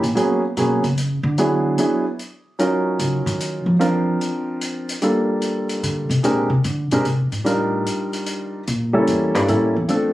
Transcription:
0.03 A#2, closed hi-hat
0.15 F#3 A#3 B3 C#4 G#4, closed hi-hat
0.57 B2 F#3 A#3 B3 C#4 G#4, closed hi-hat
0.84 C#3, closed hi-hat
0.98 closed hi-hat
1.23 D3
1.38 F#3 B3 D4 E4 G#4, closed hi-hat
1.78 F#3 B3 D4 E4 G#4, closed hi-hat
2.19 closed hi-hat
2.59 F#3 C#4 D#4 F4 A#4, closed hi-hat
2.99 C#3, closed hi-hat
3.26 D#3, closed hi-hat
3.40 closed hi-hat
3.66 F3
3.79 F3 C4 D4 F4 A#4, closed hi-hat
4.21 closed hi-hat
4.61 closed hi-hat
4.89 closed hi-hat
5.02 G3 A#3 D4 F4 A4, closed hi-hat
5.42 closed hi-hat
5.69 closed hi-hat
5.83 D3, closed hi-hat
6.09 C3, closed hi-hat
6.23 A#2 G#3 C4 D4 G4 A#4, closed hi-hat
6.50 C3
6.64 D3, closed hi-hat
6.91 B2 G#3 C4 D4 G4 A#4, closed hi-hat
7.05 C3, closed hi-hat
7.32 A2, closed hi-hat
7.44 G3 D4 D#4 F4 A#4, closed hi-hat
7.86 closed hi-hat
8.13 closed hi-hat
8.26 closed hi-hat
8.67 A#2, closed hi-hat
8.93 C#2 G3 A#3 C#4 E4 A4
9.07 E2, closed hi-hat
9.35 G2, closed hi-hat
9.48 A2 G3 A#3 C#4 E4 A4, closed hi-hat
9.76 E2
9.88 F3 A3 C4 D4 A4, closed hi-hat

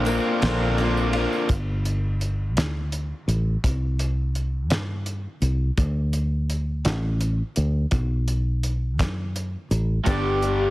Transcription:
Already playing: A#1 D4 F4 A#4 C5
0.05 D3 A#3 C4 D4 F4, ride, tambourine
0.42 A#1 A#2 D3 A#3 C4 D4 F4, snare, ride, tambourine
0.78 D3 A#3 C4 D4 F4, ride
0.97 tambourine
1.13 A#3 C4 D4 F4, ride
1.33 tambourine
1.49 G1, kick, closed hi-hat
1.85 closed hi-hat
2.21 closed hi-hat
2.56 D2, snare, closed hi-hat
2.92 closed hi-hat
3.28 A1, closed hi-hat
3.64 C2, kick, closed hi-hat
3.99 closed hi-hat
4.35 closed hi-hat
4.70 G2, snare, closed hi-hat
5.06 closed hi-hat
5.42 C2, closed hi-hat
5.78 D2, kick, closed hi-hat
6.13 closed hi-hat
6.50 closed hi-hat
6.85 A1, snare, closed hi-hat
7.21 closed hi-hat
7.56 D2, closed hi-hat
7.91 B1, kick, closed hi-hat
8.28 closed hi-hat
8.63 closed hi-hat
8.99 F#2, kick, snare, closed hi-hat
9.36 closed hi-hat
9.71 A1, closed hi-hat
10.06 G1 G2 D3 G3 B3 D4 G4 D5, kick, closed hi-hat
10.42 G3 B3 D4 G4, closed hi-hat

